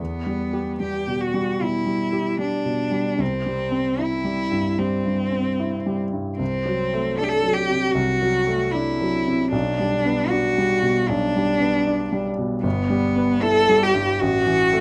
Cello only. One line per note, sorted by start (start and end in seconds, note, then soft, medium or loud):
0.00 0.77 B3 medium
0.82 1.22 G4 medium
1.20 1.64 F#4 medium
1.63 2.41 E4 medium
2.41 3.23 D4 medium
3.21 4.04 C4 medium
4.03 4.81 E4 medium
4.79 5.99 C4 medium
6.38 7.19 C4 medium
7.18 7.25 A4 medium
7.24 7.30 G4 medium
7.28 7.55 A4 medium
7.53 7.93 G4 medium
7.92 8.73 F#4 medium
8.72 9.50 E4 medium
9.51 10.31 D4 medium
10.29 11.09 F#4 medium
11.08 12.25 D4 medium
12.63 13.43 B3 medium
13.42 13.84 A4 medium
13.83 14.23 G4 medium
14.21 14.80 F#4 medium